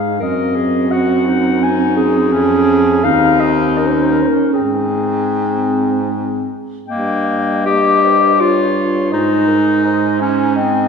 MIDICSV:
0, 0, Header, 1, 5, 480
1, 0, Start_track
1, 0, Key_signature, -4, "major"
1, 0, Tempo, 716846
1, 133, Time_signature, 3, 2, 24, 8
1, 2533, Tempo, 779221
1, 4933, Tempo, 723764
1, 7057, End_track
2, 0, Start_track
2, 0, Title_t, "Clarinet"
2, 0, Program_c, 0, 71
2, 0, Note_on_c, 0, 77, 54
2, 144, Note_off_c, 0, 77, 0
2, 151, Note_on_c, 0, 75, 60
2, 610, Note_on_c, 0, 78, 71
2, 620, Note_off_c, 0, 75, 0
2, 1093, Note_on_c, 0, 80, 69
2, 1103, Note_off_c, 0, 78, 0
2, 1313, Note_off_c, 0, 80, 0
2, 1317, Note_on_c, 0, 68, 80
2, 2034, Note_on_c, 0, 77, 84
2, 2044, Note_off_c, 0, 68, 0
2, 2276, Note_on_c, 0, 75, 64
2, 2286, Note_off_c, 0, 77, 0
2, 2528, Note_on_c, 0, 70, 51
2, 2538, Note_off_c, 0, 75, 0
2, 2583, Note_on_c, 0, 72, 46
2, 2592, Note_off_c, 0, 70, 0
2, 2625, Note_on_c, 0, 70, 44
2, 2634, Note_off_c, 0, 72, 0
2, 2673, Note_on_c, 0, 72, 55
2, 2682, Note_off_c, 0, 70, 0
2, 2736, Note_on_c, 0, 70, 56
2, 2745, Note_off_c, 0, 72, 0
2, 2797, Note_on_c, 0, 72, 54
2, 2806, Note_off_c, 0, 70, 0
2, 2836, Note_on_c, 0, 70, 54
2, 2846, Note_off_c, 0, 72, 0
2, 2990, Note_off_c, 0, 70, 0
2, 2993, Note_on_c, 0, 68, 56
2, 4182, Note_off_c, 0, 68, 0
2, 4442, Note_on_c, 0, 79, 48
2, 4927, Note_on_c, 0, 75, 48
2, 4937, Note_off_c, 0, 79, 0
2, 5173, Note_on_c, 0, 72, 47
2, 5183, Note_off_c, 0, 75, 0
2, 5414, Note_on_c, 0, 73, 43
2, 5424, Note_off_c, 0, 72, 0
2, 5881, Note_off_c, 0, 73, 0
2, 5885, Note_on_c, 0, 75, 45
2, 6359, Note_off_c, 0, 75, 0
2, 6373, Note_on_c, 0, 75, 51
2, 6608, Note_on_c, 0, 80, 47
2, 6618, Note_off_c, 0, 75, 0
2, 7057, Note_off_c, 0, 80, 0
2, 7057, End_track
3, 0, Start_track
3, 0, Title_t, "Alto saxophone"
3, 0, Program_c, 1, 65
3, 0, Note_on_c, 1, 63, 40
3, 109, Note_off_c, 1, 63, 0
3, 141, Note_on_c, 1, 60, 45
3, 1541, Note_off_c, 1, 60, 0
3, 1566, Note_on_c, 1, 61, 54
3, 2045, Note_on_c, 1, 60, 54
3, 2056, Note_off_c, 1, 61, 0
3, 2533, Note_on_c, 1, 61, 56
3, 2543, Note_off_c, 1, 60, 0
3, 3309, Note_off_c, 1, 61, 0
3, 3491, Note_on_c, 1, 60, 38
3, 4217, Note_off_c, 1, 60, 0
3, 4441, Note_on_c, 1, 75, 46
3, 5414, Note_on_c, 1, 73, 44
3, 5424, Note_off_c, 1, 75, 0
3, 5894, Note_on_c, 1, 72, 49
3, 5904, Note_off_c, 1, 73, 0
3, 6126, Note_on_c, 1, 70, 50
3, 6136, Note_off_c, 1, 72, 0
3, 6376, Note_on_c, 1, 72, 47
3, 6386, Note_off_c, 1, 70, 0
3, 6836, Note_off_c, 1, 72, 0
3, 6840, Note_on_c, 1, 75, 51
3, 7057, Note_off_c, 1, 75, 0
3, 7057, End_track
4, 0, Start_track
4, 0, Title_t, "Clarinet"
4, 0, Program_c, 2, 71
4, 0, Note_on_c, 2, 68, 44
4, 128, Note_off_c, 2, 68, 0
4, 133, Note_on_c, 2, 70, 51
4, 375, Note_on_c, 2, 68, 48
4, 385, Note_off_c, 2, 70, 0
4, 603, Note_off_c, 2, 68, 0
4, 607, Note_on_c, 2, 66, 50
4, 844, Note_on_c, 2, 63, 48
4, 854, Note_off_c, 2, 66, 0
4, 1075, Note_off_c, 2, 63, 0
4, 1079, Note_on_c, 2, 63, 59
4, 1556, Note_on_c, 2, 61, 65
4, 1566, Note_off_c, 2, 63, 0
4, 2042, Note_on_c, 2, 63, 64
4, 2052, Note_off_c, 2, 61, 0
4, 3000, Note_off_c, 2, 63, 0
4, 3004, Note_on_c, 2, 60, 48
4, 4188, Note_off_c, 2, 60, 0
4, 4437, Note_on_c, 2, 58, 63
4, 4901, Note_off_c, 2, 58, 0
4, 4922, Note_on_c, 2, 67, 70
4, 5418, Note_on_c, 2, 65, 74
4, 5428, Note_off_c, 2, 67, 0
4, 5895, Note_off_c, 2, 65, 0
4, 5899, Note_on_c, 2, 63, 69
4, 6601, Note_off_c, 2, 63, 0
4, 6612, Note_on_c, 2, 61, 61
4, 6855, Note_on_c, 2, 60, 71
4, 6865, Note_off_c, 2, 61, 0
4, 7057, Note_off_c, 2, 60, 0
4, 7057, End_track
5, 0, Start_track
5, 0, Title_t, "Baritone saxophone"
5, 0, Program_c, 3, 67
5, 0, Note_on_c, 3, 44, 44
5, 104, Note_off_c, 3, 44, 0
5, 136, Note_on_c, 3, 42, 49
5, 1562, Note_on_c, 3, 41, 60
5, 1572, Note_off_c, 3, 42, 0
5, 2034, Note_off_c, 3, 41, 0
5, 2038, Note_on_c, 3, 39, 57
5, 2807, Note_off_c, 3, 39, 0
5, 3007, Note_on_c, 3, 44, 48
5, 4219, Note_off_c, 3, 44, 0
5, 4447, Note_on_c, 3, 43, 52
5, 5893, Note_on_c, 3, 44, 48
5, 5903, Note_off_c, 3, 43, 0
5, 7057, Note_off_c, 3, 44, 0
5, 7057, End_track
0, 0, End_of_file